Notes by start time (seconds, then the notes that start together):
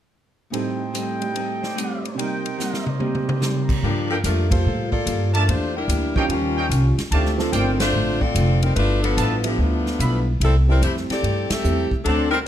0.50 A2 G3 C4 D#4 A4 C5 D#5 G5, ride
0.92 A2 G3 C4 D#4, hi-hat pedal, ride
1.20 G3 A3 G4 D5, ride
1.33 A2 G3 C4 D#4, ride
1.62 C5 D5, snare
1.74 A2 G3 C4 D#4
1.78 hi-hat pedal, ride
2.05 ride
2.15 C3 G3 A#3 D#4 A#4 C5 D5 D#5 G5
2.19 D#4 A#4, ride
2.46 ride
2.57 C3 G3 A#3 D#4, snare, hi-hat pedal
2.74 snare
2.86 mid tom
2.98 C3 G3 A#3 C4 D#4 G4 D5 G5, mid tom
3.15 mid tom
3.21 D6
3.29 mid tom
3.40 C3 G3 A#3 D#4 C6, snare, hi-hat pedal
3.63 A#5
3.69 kick, crash
3.82 G2 F3 G3 A#3 D4 F4 G4 A4
4.09 F3 A#3 D4 A4 A#4 F5 G5
4.24 F2 F3 G3 A3 A#3 D4 F4 A4 A#4, hi-hat pedal, ride
4.50 G3 A#3 F4 A4 C5, kick, ride
4.64 A2 G3 A#3 F4 A4
4.92 A#3 F4 A4 D5, kick
5.05 G2 G3 A#3 F4 A4, hi-hat pedal, ride
5.33 F3 A3 D4 A#4 D5 E5 A5, ride
5.47 E2 E3 A3 A#3 D4 F4 G4 C5, ride
5.77 G3 D4 E4 A#4
5.88 D2 E3 A#3 D4 G4, hi-hat pedal, ride
6.15 E3 F3 A#3 C#4 D4 D#4 G4 C#5 D#5 F5 G5, kick
6.28 D#2 D#3 G3 A#3 C#4 F4, ride
6.33 F4
6.57 C#5 D#5 F5 G5
6.69 C2 D#3 G3 C#4, hi-hat pedal, ride
6.74 F4
6.98 muted upright bass stroke, snare, ride
7.11 D2 D3 D#3 A3 C4 G4 C5 D5 F5 A5, ride
7.15 F4
7.26 snare
7.38 F3 C4 D4 A4, snare
7.52 G1 D3 G3 A3 C4 D#4 F4 A#4 C5 D5 F5 G5, hi-hat pedal, ride
7.80 A3 D4 F4 C5, snare, ride
7.93 A1 D3 A3 C4 F4
8.21 C4 F4 A4 D5, kick
8.35 F1 D3 A3 C4 F4, hi-hat pedal, ride
8.62 G3 C4 D#4 A#4, ride
8.76 G1 G2 F3 A3 B3 D4 F4 B4, ride
8.80 E4
9.02 F3 B3 D4 A4, ride
9.17 A1 G2 F3 B3 E4 B4 E5 F5 A5, hi-hat pedal, ride
9.44 F3 B3 G4 A4 E5, ride
9.48 D4
9.58 D2 G2 F3 A3 B3 D4 E4 F4
9.86 snare
9.99 B1 G2 F3 B3 E4 B4 E5 F5 B5, hi-hat pedal, ride
10.40 C2 C3 G3 A3 C4 E4, ride
10.44 A4
10.67 G3 C4 E4 A4 A#4
10.82 F2 C3 G3 A3 E4 G4 C5, hi-hat pedal, ride
10.97 snare
11.09 C4 G4 A4 D5, muted upright bass stroke, snare, ride
11.22 G2 C3 G3 A3 E4, ride
11.50 C4 G4 A4 E5, muted upright bass stroke, snare, ride
11.63 E2 C3 G3 A3 C4 E4 A4, hi-hat pedal
11.91 muted upright bass stroke, kick
12.05 D2 D3 F#3 A3 C4 D4 F#4 A4 C5 D5 F#5 A5, ride
12.31 G3 C4 D#4 A#4